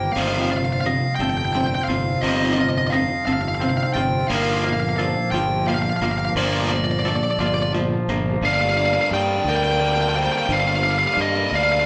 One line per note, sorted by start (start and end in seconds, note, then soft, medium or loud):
0.00 0.13 G2 medium
0.00 0.12 D#3 medium
0.00 0.13 D#3 medium
0.00 0.16 G3 medium
0.00 0.13 A#3 medium
0.00 0.17 A#3 medium
0.00 0.17 D4 medium
0.00 0.12 G4 medium
0.00 0.17 A#4 medium
0.00 0.16 C5 medium
0.00 0.12 G5 medium
0.13 0.99 G1 medium
0.13 0.49 F2 medium
0.13 0.19 F5 medium
0.17 0.50 C3 medium
0.17 0.50 D#3 loud
0.17 0.49 F3 medium
0.17 8.41 F3 medium
0.17 1.90 G3 medium
0.17 4.28 C4 medium
0.17 4.28 D#4 medium
0.17 0.86 C5 medium
0.17 0.26 F5 medium
0.17 8.41 A5 medium
0.28 0.35 F5 medium
0.36 0.41 F5 medium
0.42 0.49 F5 medium
0.50 0.82 F2 medium
0.50 0.83 C3 medium
0.50 1.88 F4 medium
0.50 0.57 F5 medium
0.57 0.64 F5 medium
0.64 0.72 F5 medium
0.73 0.80 F5 medium
0.81 1.15 F5 medium
0.85 1.17 F2 medium
0.85 1.17 C3 medium
0.85 2.59 D#5 medium
1.15 1.75 G1 medium
1.15 1.23 G5 medium
1.21 1.52 F2 medium
1.21 1.52 C3 medium
1.21 2.95 A4 medium
1.21 1.29 G5 medium
1.30 1.37 G5 medium
1.37 1.45 G5 medium
1.45 1.53 G5 medium
1.53 1.87 F2 medium
1.53 1.87 C3 medium
1.53 3.28 C4 medium
1.53 2.23 C5 medium
1.53 1.60 G5 medium
1.61 1.66 G5 medium
1.66 1.74 G5 medium
1.75 1.81 G5 medium
1.82 2.23 F5 medium
1.82 1.84 G5 medium
1.88 2.16 G1 medium
1.88 2.21 F2 medium
1.88 2.21 C3 medium
1.88 2.57 F4 medium
2.21 3.06 G1 loud
2.21 2.56 F2 medium
2.21 2.57 C3 loud
2.21 2.57 F3 medium
2.21 3.96 G3 medium
2.21 2.93 C5 medium
2.21 2.28 D#5 medium
2.25 2.57 D#3 loud
2.25 2.37 D#5 medium
2.37 2.45 D#5 medium
2.45 2.53 D#5 medium
2.53 3.94 F4 medium
2.53 2.61 D#5 medium
2.58 2.89 F2 medium
2.58 2.89 C3 medium
2.58 2.69 D#5 medium
2.69 2.77 D#5 medium
2.78 2.86 D#5 medium
2.87 2.95 D#5 medium
2.87 3.24 F5 medium
2.92 3.24 F2 medium
2.92 3.25 C3 medium
2.92 4.31 D#5 medium
3.25 3.82 G1 medium
3.25 3.59 F2 medium
3.25 3.59 C3 medium
3.25 4.32 A4 medium
3.25 3.32 F5 medium
3.33 3.40 F5 medium
3.41 3.48 F5 medium
3.48 3.55 F5 medium
3.55 3.62 F5 medium
3.60 3.94 F2 medium
3.60 3.94 C3 medium
3.60 4.30 C4 medium
3.60 4.31 C5 medium
3.60 3.69 F5 medium
3.69 3.77 F5 medium
3.77 3.83 F5 medium
3.83 3.91 F5 medium
3.93 4.23 G1 medium
3.93 4.28 F2 medium
3.93 4.28 C3 medium
3.93 4.32 F4 medium
3.93 4.28 G5 medium
4.28 5.13 G1 loud
4.28 6.02 G2 medium
4.28 4.63 A#2 loud
4.28 4.63 F3 medium
4.28 4.64 A#3 loud
4.28 8.40 D4 medium
4.28 5.00 A#4 medium
4.28 4.35 F5 loud
4.32 8.40 A#3 medium
4.32 4.42 F5 medium
4.43 4.50 F5 medium
4.50 4.57 F5 medium
4.57 4.64 F5 medium
4.64 4.96 A#2 medium
4.64 4.97 F3 medium
4.64 6.02 A#3 medium
4.64 4.72 F5 medium
4.73 4.80 F5 medium
4.80 4.88 F5 medium
4.89 4.96 F5 medium
4.97 5.30 A#2 medium
4.97 5.31 F3 medium
4.97 6.71 A4 medium
4.97 5.68 C5 medium
4.97 5.30 F5 medium
5.31 5.88 G1 medium
5.31 5.65 A#2 medium
5.31 5.65 F3 medium
5.31 7.05 F4 medium
5.31 5.65 G5 medium
5.67 6.00 A#2 medium
5.67 7.40 F3 medium
5.67 6.00 F3 medium
5.67 5.74 F5 medium
5.75 5.82 F5 medium
5.82 5.89 F5 medium
5.90 5.96 F5 medium
5.96 6.03 F5 medium
6.01 6.29 G1 medium
6.01 6.34 A#2 medium
6.01 6.34 F3 medium
6.01 6.69 A#3 medium
6.01 6.11 F5 medium
6.12 6.18 F5 medium
6.18 6.25 F5 medium
6.25 6.32 F5 medium
6.35 7.18 G1 loud
6.35 8.08 G2 medium
6.35 6.69 A#2 loud
6.35 6.70 F3 loud
6.35 6.70 A#3 loud
6.35 7.06 C5 medium
6.35 6.44 D5 medium
6.44 6.52 D5 medium
6.53 6.60 D5 medium
6.60 6.68 D5 medium
6.69 7.02 A#2 medium
6.69 7.03 F3 medium
6.69 8.08 A#3 medium
6.69 6.75 D5 medium
6.76 6.84 D5 medium
6.84 6.91 D5 medium
6.91 6.99 D5 medium
6.99 7.07 D5 medium
7.05 7.37 A#2 medium
7.05 7.37 F3 medium
7.05 8.43 A4 medium
7.05 7.75 D5 medium
7.05 7.16 D5 medium
7.16 7.23 D5 medium
7.24 7.30 D5 medium
7.31 7.39 D5 medium
7.38 7.94 G1 medium
7.38 7.72 A#2 medium
7.38 7.72 F3 medium
7.38 8.44 F4 medium
7.38 7.46 D5 medium
7.46 7.54 D5 medium
7.54 7.62 D5 medium
7.62 7.70 D5 medium
7.75 8.06 A#2 medium
7.75 8.44 F3 medium
7.75 8.06 F3 medium
7.75 8.44 C5 medium
8.08 8.36 G1 loud
8.08 8.40 A#2 medium
8.08 8.41 F3 medium
8.08 8.44 A#3 medium
8.41 8.97 G1 loud
8.41 10.48 G2 loud
8.41 9.11 D3 loud
8.41 11.86 D3 medium
8.41 8.80 G3 loud
8.41 11.86 G4 medium
8.41 11.86 A#4 medium
8.41 9.13 D5 medium
8.41 11.86 F5 medium
8.41 8.53 F5 loud
8.46 8.78 A#3 loud
8.46 8.76 D4 loud
8.53 8.61 F5 medium
8.61 8.69 F5 loud
8.69 8.77 F5 medium
8.77 9.13 G3 medium
8.77 9.14 A#3 medium
8.77 9.15 D4 medium
8.77 8.85 F5 loud
8.85 8.93 F5 medium
8.93 9.01 F5 medium
9.01 9.09 F5 medium
9.11 9.39 G2 loud
9.11 9.79 D3 medium
9.11 9.49 G3 medium
9.11 9.48 A#3 medium
9.11 9.46 D4 medium
9.11 9.48 G5 loud
9.11 9.48 D#6 medium
9.44 10.28 D2 medium
9.44 9.82 A#3 medium
9.44 9.83 D4 medium
9.44 10.16 A#4 medium
9.49 9.81 G3 medium
9.49 9.56 G5 loud
9.56 9.63 G5 medium
9.63 9.71 G5 loud
9.72 9.79 G5 medium
9.80 10.49 D3 medium
9.80 10.17 G3 medium
9.80 10.15 A#3 medium
9.80 10.14 D4 medium
9.80 9.86 G5 loud
9.86 9.94 G5 medium
9.94 10.01 G5 loud
10.01 10.09 G5 medium
10.09 10.16 G5 loud
10.14 10.50 G3 medium
10.14 10.51 A#3 medium
10.14 10.52 D4 medium
10.14 10.85 C5 medium
10.14 10.23 G5 loud
10.23 10.31 G5 loud
10.32 10.38 G5 medium
10.38 10.45 G5 medium
10.46 11.04 G1 loud
10.46 11.86 G2 loud
10.46 11.17 D3 loud
10.46 10.53 G5 medium
10.51 10.87 G3 loud
10.51 10.86 A#3 loud
10.51 10.84 D4 loud
10.51 10.60 F5 loud
10.60 10.67 F5 medium
10.67 10.75 F5 loud
10.76 10.83 F5 medium
10.83 11.20 A#3 medium
10.83 11.21 D4 medium
10.83 10.91 F5 loud
10.83 11.53 D6 medium
10.88 11.20 G3 medium
10.88 10.98 F5 medium
10.99 11.06 F5 medium
11.07 11.13 F5 medium
11.14 11.45 G2 loud
11.14 11.21 F5 medium
11.18 11.86 D3 medium
11.18 11.57 G3 medium
11.18 11.55 A#3 medium
11.18 11.53 D4 medium
11.18 11.55 D#5 loud
11.51 11.86 D2 medium
11.51 11.86 A#3 medium
11.51 11.86 D4 medium
11.51 11.86 D5 loud
11.55 11.86 G3 medium
11.55 11.63 F5 loud
11.63 11.71 F5 medium
11.72 11.79 F5 loud
11.80 11.86 F5 medium